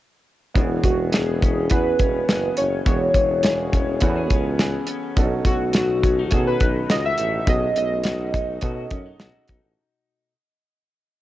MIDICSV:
0, 0, Header, 1, 6, 480
1, 0, Start_track
1, 0, Key_signature, 4, "major"
1, 0, Tempo, 576369
1, 463, Time_signature, 4, 2, 24, 8
1, 9341, End_track
2, 0, Start_track
2, 0, Title_t, "Synth keys"
2, 0, Program_c, 0, 88
2, 701, Note_on_c, 0, 66, 73
2, 946, Note_on_c, 0, 68, 75
2, 949, Note_off_c, 0, 66, 0
2, 1391, Note_off_c, 0, 68, 0
2, 1424, Note_on_c, 0, 71, 86
2, 2143, Note_on_c, 0, 73, 88
2, 2165, Note_off_c, 0, 71, 0
2, 2366, Note_off_c, 0, 73, 0
2, 2386, Note_on_c, 0, 73, 89
2, 3791, Note_off_c, 0, 73, 0
2, 4547, Note_on_c, 0, 66, 81
2, 5267, Note_on_c, 0, 68, 83
2, 5286, Note_off_c, 0, 66, 0
2, 5388, Note_off_c, 0, 68, 0
2, 5389, Note_on_c, 0, 71, 78
2, 5754, Note_on_c, 0, 75, 88
2, 5757, Note_off_c, 0, 71, 0
2, 5871, Note_off_c, 0, 75, 0
2, 5875, Note_on_c, 0, 76, 103
2, 6239, Note_off_c, 0, 76, 0
2, 6239, Note_on_c, 0, 75, 97
2, 6467, Note_off_c, 0, 75, 0
2, 6477, Note_on_c, 0, 75, 91
2, 7877, Note_off_c, 0, 75, 0
2, 9341, End_track
3, 0, Start_track
3, 0, Title_t, "Upright piano"
3, 0, Program_c, 1, 0
3, 455, Note_on_c, 1, 59, 70
3, 460, Note_on_c, 1, 61, 68
3, 467, Note_on_c, 1, 66, 66
3, 474, Note_on_c, 1, 68, 81
3, 598, Control_c, 1, 64, 127
3, 1311, Note_off_c, 1, 59, 0
3, 1314, Note_off_c, 1, 61, 0
3, 1318, Note_off_c, 1, 66, 0
3, 1321, Note_off_c, 1, 68, 0
3, 1415, Note_on_c, 1, 59, 62
3, 1421, Note_on_c, 1, 61, 59
3, 1427, Note_on_c, 1, 66, 59
3, 1436, Note_on_c, 1, 68, 65
3, 2271, Note_off_c, 1, 59, 0
3, 2275, Note_off_c, 1, 61, 0
3, 2278, Note_off_c, 1, 66, 0
3, 2282, Note_off_c, 1, 68, 0
3, 2373, Note_on_c, 1, 59, 65
3, 2378, Note_on_c, 1, 61, 58
3, 2386, Note_on_c, 1, 66, 56
3, 2394, Note_on_c, 1, 68, 69
3, 3231, Note_off_c, 1, 59, 0
3, 3233, Note_off_c, 1, 61, 0
3, 3237, Note_off_c, 1, 66, 0
3, 3241, Note_off_c, 1, 68, 0
3, 3338, Note_on_c, 1, 59, 74
3, 3343, Note_on_c, 1, 61, 70
3, 3350, Note_on_c, 1, 66, 69
3, 3356, Note_on_c, 1, 69, 64
3, 3403, Note_off_c, 1, 69, 0
3, 3411, Note_on_c, 1, 71, 75
3, 4193, Note_off_c, 1, 59, 0
3, 4195, Note_off_c, 1, 61, 0
3, 4199, Note_off_c, 1, 66, 0
3, 4229, Note_off_c, 1, 71, 0
3, 4298, Note_on_c, 1, 61, 75
3, 4303, Note_on_c, 1, 62, 55
3, 4311, Note_on_c, 1, 66, 71
3, 4315, Control_c, 1, 64, 0
3, 4320, Note_on_c, 1, 69, 84
3, 4357, Note_off_c, 1, 62, 0
3, 4358, Note_on_c, 1, 63, 67
3, 4451, Control_c, 1, 64, 127
3, 5153, Note_off_c, 1, 61, 0
3, 5159, Note_off_c, 1, 66, 0
3, 5164, Note_off_c, 1, 69, 0
3, 5183, Note_off_c, 1, 63, 0
3, 5258, Note_on_c, 1, 61, 66
3, 5266, Note_on_c, 1, 51, 62
3, 5272, Note_on_c, 1, 66, 55
3, 5280, Note_on_c, 1, 69, 71
3, 6113, Note_off_c, 1, 61, 0
3, 6117, Note_off_c, 1, 51, 0
3, 6120, Note_off_c, 1, 66, 0
3, 6124, Note_off_c, 1, 69, 0
3, 6209, Note_on_c, 1, 61, 58
3, 6219, Note_on_c, 1, 63, 57
3, 6227, Note_on_c, 1, 66, 60
3, 6231, Note_on_c, 1, 68, 71
3, 7069, Note_off_c, 1, 61, 0
3, 7074, Note_off_c, 1, 63, 0
3, 7078, Note_off_c, 1, 66, 0
3, 7080, Note_off_c, 1, 68, 0
3, 7174, Note_on_c, 1, 61, 75
3, 7180, Note_on_c, 1, 63, 67
3, 7188, Note_on_c, 1, 66, 66
3, 7192, Note_on_c, 1, 69, 89
3, 8032, Note_off_c, 1, 61, 0
3, 8035, Note_off_c, 1, 63, 0
3, 8039, Note_off_c, 1, 66, 0
3, 8041, Note_off_c, 1, 69, 0
3, 8153, Control_c, 1, 64, 0
3, 9341, End_track
4, 0, Start_track
4, 0, Title_t, "Clean electric guitar"
4, 0, Program_c, 2, 27
4, 464, Note_on_c, 2, 52, 72
4, 702, Note_on_c, 2, 59, 50
4, 942, Note_on_c, 2, 68, 63
4, 1183, Note_on_c, 2, 61, 48
4, 1417, Note_off_c, 2, 68, 0
4, 1427, Note_on_c, 2, 68, 62
4, 1653, Note_off_c, 2, 61, 0
4, 1663, Note_on_c, 2, 61, 55
4, 1896, Note_off_c, 2, 68, 0
4, 1906, Note_on_c, 2, 68, 57
4, 2138, Note_off_c, 2, 61, 0
4, 2148, Note_on_c, 2, 61, 50
4, 2374, Note_off_c, 2, 52, 0
4, 2384, Note_on_c, 2, 52, 72
4, 2620, Note_off_c, 2, 59, 0
4, 2623, Note_on_c, 2, 59, 52
4, 2854, Note_off_c, 2, 68, 0
4, 2864, Note_on_c, 2, 68, 59
4, 3092, Note_off_c, 2, 61, 0
4, 3102, Note_on_c, 2, 61, 56
4, 3338, Note_off_c, 2, 68, 0
4, 3342, Note_on_c, 2, 66, 62
4, 3461, Note_off_c, 2, 66, 0
4, 3461, Note_on_c, 2, 68, 55
4, 3576, Note_off_c, 2, 61, 0
4, 3586, Note_on_c, 2, 61, 60
4, 3808, Note_off_c, 2, 68, 0
4, 3818, Note_on_c, 2, 68, 55
4, 4049, Note_off_c, 2, 61, 0
4, 4059, Note_on_c, 2, 61, 54
4, 4302, Note_on_c, 2, 47, 81
4, 4303, Note_off_c, 2, 52, 0
4, 4348, Note_off_c, 2, 68, 0
4, 4349, Note_off_c, 2, 61, 0
4, 4540, Note_off_c, 2, 59, 0
4, 4543, Note_on_c, 2, 57, 56
4, 4787, Note_on_c, 2, 66, 63
4, 5032, Note_on_c, 2, 61, 58
4, 5154, Note_off_c, 2, 61, 0
4, 5154, Note_on_c, 2, 63, 45
4, 5273, Note_off_c, 2, 66, 0
4, 5276, Note_on_c, 2, 66, 59
4, 5501, Note_off_c, 2, 63, 0
4, 5511, Note_on_c, 2, 63, 61
4, 5743, Note_off_c, 2, 66, 0
4, 5746, Note_on_c, 2, 66, 60
4, 5987, Note_off_c, 2, 63, 0
4, 5990, Note_on_c, 2, 63, 48
4, 6221, Note_off_c, 2, 47, 0
4, 6225, Note_on_c, 2, 47, 74
4, 6461, Note_off_c, 2, 57, 0
4, 6464, Note_on_c, 2, 57, 54
4, 6704, Note_off_c, 2, 66, 0
4, 6707, Note_on_c, 2, 66, 68
4, 6942, Note_off_c, 2, 63, 0
4, 6945, Note_on_c, 2, 63, 56
4, 7180, Note_off_c, 2, 66, 0
4, 7183, Note_on_c, 2, 66, 54
4, 7424, Note_off_c, 2, 63, 0
4, 7428, Note_on_c, 2, 61, 60
4, 7543, Note_off_c, 2, 61, 0
4, 7543, Note_on_c, 2, 63, 44
4, 7658, Note_off_c, 2, 66, 0
4, 7662, Note_on_c, 2, 66, 62
4, 7888, Note_off_c, 2, 63, 0
4, 7898, Note_on_c, 2, 63, 47
4, 8605, Note_off_c, 2, 63, 0
4, 8607, Note_off_c, 2, 66, 0
4, 8609, Note_off_c, 2, 47, 0
4, 8609, Note_off_c, 2, 57, 0
4, 9341, End_track
5, 0, Start_track
5, 0, Title_t, "Tuba"
5, 0, Program_c, 3, 58
5, 461, Note_on_c, 3, 28, 86
5, 654, Note_off_c, 3, 28, 0
5, 694, Note_on_c, 3, 28, 95
5, 1385, Note_off_c, 3, 28, 0
5, 1423, Note_on_c, 3, 40, 91
5, 1615, Note_off_c, 3, 40, 0
5, 1662, Note_on_c, 3, 28, 77
5, 1854, Note_off_c, 3, 28, 0
5, 1905, Note_on_c, 3, 30, 77
5, 2096, Note_off_c, 3, 30, 0
5, 2149, Note_on_c, 3, 30, 80
5, 2339, Note_off_c, 3, 30, 0
5, 2382, Note_on_c, 3, 28, 94
5, 2574, Note_off_c, 3, 28, 0
5, 2619, Note_on_c, 3, 28, 88
5, 3307, Note_off_c, 3, 28, 0
5, 3345, Note_on_c, 3, 40, 107
5, 3583, Note_on_c, 3, 37, 97
5, 3596, Note_off_c, 3, 40, 0
5, 3967, Note_off_c, 3, 37, 0
5, 4304, Note_on_c, 3, 35, 101
5, 4495, Note_off_c, 3, 35, 0
5, 4538, Note_on_c, 3, 35, 86
5, 5266, Note_on_c, 3, 47, 90
5, 5279, Note_off_c, 3, 35, 0
5, 5457, Note_off_c, 3, 47, 0
5, 5500, Note_on_c, 3, 35, 87
5, 5693, Note_off_c, 3, 35, 0
5, 5744, Note_on_c, 3, 37, 78
5, 5935, Note_off_c, 3, 37, 0
5, 5982, Note_on_c, 3, 33, 75
5, 6174, Note_off_c, 3, 33, 0
5, 6223, Note_on_c, 3, 35, 94
5, 6415, Note_off_c, 3, 35, 0
5, 6462, Note_on_c, 3, 35, 99
5, 7149, Note_off_c, 3, 35, 0
5, 7183, Note_on_c, 3, 47, 91
5, 7375, Note_off_c, 3, 47, 0
5, 7420, Note_on_c, 3, 42, 80
5, 7614, Note_off_c, 3, 42, 0
5, 7663, Note_on_c, 3, 35, 74
5, 7759, Note_off_c, 3, 35, 0
5, 7902, Note_on_c, 3, 35, 79
5, 7999, Note_off_c, 3, 35, 0
5, 8024, Note_on_c, 3, 33, 77
5, 8120, Note_off_c, 3, 33, 0
5, 9341, End_track
6, 0, Start_track
6, 0, Title_t, "Drums"
6, 462, Note_on_c, 9, 36, 88
6, 463, Note_on_c, 9, 42, 68
6, 545, Note_off_c, 9, 36, 0
6, 546, Note_off_c, 9, 42, 0
6, 696, Note_on_c, 9, 36, 71
6, 702, Note_on_c, 9, 42, 63
6, 779, Note_off_c, 9, 36, 0
6, 785, Note_off_c, 9, 42, 0
6, 937, Note_on_c, 9, 42, 87
6, 949, Note_on_c, 9, 38, 92
6, 1020, Note_off_c, 9, 42, 0
6, 1032, Note_off_c, 9, 38, 0
6, 1186, Note_on_c, 9, 36, 76
6, 1193, Note_on_c, 9, 42, 59
6, 1270, Note_off_c, 9, 36, 0
6, 1276, Note_off_c, 9, 42, 0
6, 1413, Note_on_c, 9, 42, 84
6, 1425, Note_on_c, 9, 36, 81
6, 1497, Note_off_c, 9, 42, 0
6, 1508, Note_off_c, 9, 36, 0
6, 1658, Note_on_c, 9, 42, 60
6, 1663, Note_on_c, 9, 36, 80
6, 1742, Note_off_c, 9, 42, 0
6, 1746, Note_off_c, 9, 36, 0
6, 1905, Note_on_c, 9, 42, 70
6, 1906, Note_on_c, 9, 38, 100
6, 1988, Note_off_c, 9, 42, 0
6, 1989, Note_off_c, 9, 38, 0
6, 2139, Note_on_c, 9, 42, 66
6, 2222, Note_off_c, 9, 42, 0
6, 2382, Note_on_c, 9, 42, 70
6, 2384, Note_on_c, 9, 36, 88
6, 2466, Note_off_c, 9, 42, 0
6, 2467, Note_off_c, 9, 36, 0
6, 2618, Note_on_c, 9, 36, 77
6, 2622, Note_on_c, 9, 42, 70
6, 2701, Note_off_c, 9, 36, 0
6, 2706, Note_off_c, 9, 42, 0
6, 2856, Note_on_c, 9, 42, 90
6, 2869, Note_on_c, 9, 38, 99
6, 2940, Note_off_c, 9, 42, 0
6, 2952, Note_off_c, 9, 38, 0
6, 3107, Note_on_c, 9, 36, 71
6, 3111, Note_on_c, 9, 42, 55
6, 3190, Note_off_c, 9, 36, 0
6, 3194, Note_off_c, 9, 42, 0
6, 3334, Note_on_c, 9, 42, 81
6, 3346, Note_on_c, 9, 36, 81
6, 3417, Note_off_c, 9, 42, 0
6, 3429, Note_off_c, 9, 36, 0
6, 3581, Note_on_c, 9, 42, 63
6, 3584, Note_on_c, 9, 36, 86
6, 3664, Note_off_c, 9, 42, 0
6, 3668, Note_off_c, 9, 36, 0
6, 3824, Note_on_c, 9, 42, 74
6, 3825, Note_on_c, 9, 38, 94
6, 3907, Note_off_c, 9, 42, 0
6, 3908, Note_off_c, 9, 38, 0
6, 4053, Note_on_c, 9, 42, 70
6, 4137, Note_off_c, 9, 42, 0
6, 4303, Note_on_c, 9, 42, 74
6, 4304, Note_on_c, 9, 36, 89
6, 4386, Note_off_c, 9, 42, 0
6, 4388, Note_off_c, 9, 36, 0
6, 4538, Note_on_c, 9, 36, 74
6, 4542, Note_on_c, 9, 42, 69
6, 4621, Note_off_c, 9, 36, 0
6, 4625, Note_off_c, 9, 42, 0
6, 4775, Note_on_c, 9, 42, 84
6, 4787, Note_on_c, 9, 38, 101
6, 4858, Note_off_c, 9, 42, 0
6, 4870, Note_off_c, 9, 38, 0
6, 5027, Note_on_c, 9, 36, 72
6, 5030, Note_on_c, 9, 42, 60
6, 5110, Note_off_c, 9, 36, 0
6, 5113, Note_off_c, 9, 42, 0
6, 5253, Note_on_c, 9, 42, 81
6, 5265, Note_on_c, 9, 36, 80
6, 5336, Note_off_c, 9, 42, 0
6, 5348, Note_off_c, 9, 36, 0
6, 5499, Note_on_c, 9, 42, 67
6, 5503, Note_on_c, 9, 36, 81
6, 5582, Note_off_c, 9, 42, 0
6, 5586, Note_off_c, 9, 36, 0
6, 5744, Note_on_c, 9, 42, 67
6, 5745, Note_on_c, 9, 38, 93
6, 5827, Note_off_c, 9, 42, 0
6, 5828, Note_off_c, 9, 38, 0
6, 5977, Note_on_c, 9, 42, 67
6, 6060, Note_off_c, 9, 42, 0
6, 6222, Note_on_c, 9, 42, 74
6, 6223, Note_on_c, 9, 36, 88
6, 6305, Note_off_c, 9, 42, 0
6, 6306, Note_off_c, 9, 36, 0
6, 6461, Note_on_c, 9, 42, 68
6, 6544, Note_off_c, 9, 42, 0
6, 6691, Note_on_c, 9, 42, 86
6, 6704, Note_on_c, 9, 38, 94
6, 6774, Note_off_c, 9, 42, 0
6, 6787, Note_off_c, 9, 38, 0
6, 6945, Note_on_c, 9, 36, 79
6, 6950, Note_on_c, 9, 42, 59
6, 7028, Note_off_c, 9, 36, 0
6, 7033, Note_off_c, 9, 42, 0
6, 7172, Note_on_c, 9, 42, 85
6, 7183, Note_on_c, 9, 36, 85
6, 7256, Note_off_c, 9, 42, 0
6, 7267, Note_off_c, 9, 36, 0
6, 7416, Note_on_c, 9, 42, 64
6, 7421, Note_on_c, 9, 36, 83
6, 7500, Note_off_c, 9, 42, 0
6, 7504, Note_off_c, 9, 36, 0
6, 7658, Note_on_c, 9, 42, 72
6, 7659, Note_on_c, 9, 38, 98
6, 7741, Note_off_c, 9, 42, 0
6, 7742, Note_off_c, 9, 38, 0
6, 7891, Note_on_c, 9, 42, 63
6, 7905, Note_on_c, 9, 36, 76
6, 7975, Note_off_c, 9, 42, 0
6, 7988, Note_off_c, 9, 36, 0
6, 9341, End_track
0, 0, End_of_file